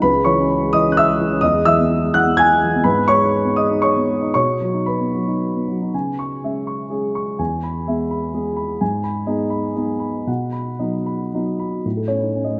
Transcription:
0.02 1.39 C#2 medium
0.02 0.24 B4 medium
0.02 0.26 B5 medium
0.13 0.33 G#3 soft
0.25 0.45 E3 soft
0.25 0.69 C#5 medium
0.25 0.72 C#6 medium
0.39 0.76 C#4 soft
0.63 0.81 G#3 soft
0.73 0.93 E3 soft
0.73 0.89 D#5 medium
0.73 0.89 D#6 medium
0.88 1.23 C#4 soft
0.92 0.97 F#6 medium
0.97 1.40 E5 medium
0.97 1.43 E6 loud
1.09 1.27 G#3 soft
1.21 1.39 E3 soft
1.32 1.43 C#4 medium
1.41 2.81 E2 medium
1.41 1.65 D#5 medium
1.41 1.65 D#6 medium
1.54 1.73 G#3 soft
1.65 1.85 E3 soft
1.65 2.11 E5 medium
1.65 2.13 E6 loud
1.79 2.17 B3 soft
2.02 2.21 G#3 soft
2.14 2.33 E3 soft
2.14 2.37 F#5 medium
2.14 2.38 F#6 medium
2.26 2.64 B3 soft
2.37 2.82 G#5 medium
2.37 2.85 G#6 loud
2.50 2.69 G#3 soft
2.64 2.81 E3 soft
2.75 2.86 B3 medium
2.84 4.30 G#2 medium
2.84 3.07 B4 medium
2.84 3.08 B5 medium
2.97 3.16 B3 soft
3.08 3.28 G#3 soft
3.08 3.54 C#5 medium
3.08 3.56 C#6 medium
3.21 3.60 D#4 soft
3.45 3.65 B3 soft
3.56 3.78 G#3 soft
3.56 3.81 D#5 medium
3.56 3.82 D#6 medium
3.71 4.11 D#4 soft
3.82 4.31 C#5 medium
3.82 4.33 C#6 medium
3.97 4.16 B3 soft
4.09 4.29 G#3 soft
4.22 4.35 D#4 soft
4.34 5.90 B2 soft
4.34 4.84 C#5 medium
4.34 4.87 C#6 medium
4.48 4.69 B3 soft
4.60 4.82 F#3 soft
4.74 5.17 D#4 soft
4.86 5.63 B4 soft
4.86 5.67 B5 medium
5.00 5.22 B3 soft
5.14 5.36 F#3 soft
5.28 5.70 D#4 soft
5.55 5.76 B3 soft
5.68 5.88 F#3 soft
5.82 5.94 D#4 soft
5.94 6.42 C#3 soft
5.94 6.34 G#5 soft
6.19 6.58 C#6 soft
6.44 6.88 G#3 soft
6.44 6.88 C#4 soft
6.44 6.82 E5 soft
6.67 7.06 C#6 soft
6.90 7.35 G#3 soft
6.90 7.35 C#4 soft
6.90 7.29 G#4 soft
7.15 7.39 C#6 soft
7.39 7.85 E2 soft
7.39 7.77 G#5 soft
7.63 8.01 B5 soft
7.87 8.30 G#3 soft
7.87 8.30 B3 soft
7.87 8.25 E5 soft
8.11 8.48 B5 soft
8.34 8.76 G#3 soft
8.34 8.77 B3 soft
8.34 8.71 G#4 soft
8.56 8.80 B5 soft
8.81 9.27 G#2 medium
8.81 9.19 G#5 medium
9.04 9.42 B5 soft
9.27 9.72 G#3 soft
9.27 9.72 B3 soft
9.27 9.73 D#4 soft
9.27 9.67 D#5 medium
9.50 9.91 B5 soft
9.76 10.23 G#3 soft
9.76 10.23 B3 soft
9.76 10.24 D#4 soft
9.76 10.17 G#4 soft
9.99 10.27 B5 soft
10.27 10.78 B2 soft
10.27 10.69 F#5 soft
10.52 10.95 B5 soft
10.79 11.28 F#3 soft
10.79 11.28 B3 soft
10.79 11.28 D#4 soft
10.79 11.21 D#5 soft
11.06 11.48 B5 soft
11.34 11.82 F#3 soft
11.34 11.82 B3 soft
11.34 11.82 D#4 soft
11.34 11.76 F#4 soft
11.59 11.85 B5 soft
11.86 12.60 A2 soft
11.97 12.17 A4 soft
12.08 12.29 C#4 soft
12.08 12.45 C#5 medium
12.22 12.34 D#4 soft
12.35 12.54 C#4 soft
12.44 12.60 A3 soft
12.44 12.57 D#5 soft

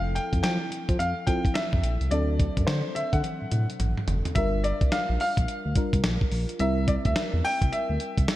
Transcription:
0.00 0.19 F1 loud
0.00 1.24 F3 medium
0.00 1.24 C4 medium
0.00 1.24 E4 medium
0.00 1.25 A4 medium
0.00 0.16 F5 loud
0.15 0.41 G5 medium
0.15 closed hi-hat medium
0.33 0.42 F2 medium
0.33 kick medium
0.33 closed hi-hat medium
0.43 0.57 F3 medium
0.43 1.01 G5 medium
0.43 snare loud
0.43 closed hi-hat medium
0.71 0.78 F3 soft
0.71 closed hi-hat medium
0.89 0.97 F3 loud
0.89 kick medium
0.89 closed hi-hat medium
0.99 1.14 F2 medium
0.99 1.28 F5 medium
0.99 closed hi-hat medium
1.27 2.11 F3 soft
1.27 1.42 F3 medium
1.27 2.10 C4 soft
1.27 2.12 E4 soft
1.27 2.12 A4 soft
1.27 1.53 G5 medium
1.27 kick medium
1.27 closed hi-hat medium
1.45 kick medium
1.45 closed hi-hat medium
1.54 2.12 E5 medium
1.54 snare loud
1.54 closed hi-hat medium
1.73 1.82 F2 medium
1.73 kick medium
1.83 1.98 A#1 medium
1.83 closed hi-hat medium
2.01 2.09 C2 medium
2.01 closed hi-hat soft
2.11 2.49 D2 loud
2.11 4.31 F#3 medium
2.11 4.32 C4 medium
2.11 4.32 D4 medium
2.11 4.33 A4 medium
2.11 2.69 D5 medium
2.11 closed hi-hat medium
2.40 kick loud
2.40 closed hi-hat medium
2.57 2.66 F#2 loud
2.57 kick medium
2.57 closed hi-hat soft
2.67 2.82 D3 loud
2.67 2.96 C5 medium
2.67 snare loud
2.67 closed hi-hat medium
2.95 3.03 D3 soft
2.95 3.13 E5 medium
2.95 closed hi-hat medium
3.13 3.22 D3 medium
3.13 4.04 F#5 medium
3.13 kick medium
3.13 closed hi-hat medium
3.24 closed hi-hat medium
3.24 high tom medium
3.42 3.46 A2 soft
3.52 3.66 A2 medium
3.52 closed hi-hat medium
3.52 mid tom medium
3.70 closed hi-hat medium
3.80 3.94 A1 loud
3.80 closed hi-hat medium
3.80 mid tom medium
3.98 mid tom medium
4.08 4.22 F#1 medium
4.08 closed hi-hat medium
4.08 floor tom medium
4.25 closed hi-hat medium
4.25 floor tom medium
4.35 4.73 G1 loud
4.35 5.73 G3 medium
4.35 5.73 D4 medium
4.35 5.74 F4 medium
4.35 5.74 A#4 medium
4.35 4.64 E5 loud
4.35 kick loud
4.35 closed hi-hat medium
4.64 4.93 D5 medium
4.64 closed hi-hat medium
4.81 4.90 C2 medium
4.81 kick medium
4.81 closed hi-hat medium
4.92 5.19 F5 loud
4.92 snare loud
4.92 closed hi-hat medium
5.09 5.18 A#1 medium
5.20 5.72 F5 loud
5.20 open hi-hat medium
5.37 5.46 A#1 medium
5.37 kick medium
5.37 closed hi-hat medium
5.48 closed hi-hat medium
5.66 5.74 D2 loud
5.75 6.58 G3 soft
5.75 6.60 D4 soft
5.75 6.60 F4 soft
5.75 6.61 A#4 medium
5.75 kick medium
5.75 closed hi-hat medium
5.93 6.02 C2 medium
5.93 kick medium
5.93 closed hi-hat medium
6.04 6.18 A#1 loud
6.04 snare loud
6.04 closed hi-hat medium
6.21 kick medium
6.32 6.46 A#1 medium
6.32 open hi-hat medium
6.49 closed hi-hat medium
6.59 6.97 C2 loud
6.59 8.36 G3 medium
6.59 8.36 C4 medium
6.59 8.36 E4 medium
6.59 8.36 A#4 medium
6.59 6.89 E5 loud
6.59 closed hi-hat medium
6.88 6.93 D5 medium
6.88 kick medium
6.88 closed hi-hat medium
7.05 7.14 D2 loud
7.05 7.45 E5 medium
7.05 kick loud
7.05 closed hi-hat medium
7.16 snare loud
7.16 closed hi-hat medium
7.33 7.42 E2 medium
7.45 7.70 G5 loud
7.45 open hi-hat medium
7.62 7.70 C2 medium
7.62 kick medium
7.62 closed hi-hat medium
7.72 8.36 E5 medium
7.72 closed hi-hat medium
7.90 7.98 D2 medium
8.00 closed hi-hat medium
8.18 8.26 C2 medium
8.18 kick medium
8.18 closed hi-hat medium
8.28 snare loud
8.28 closed hi-hat medium

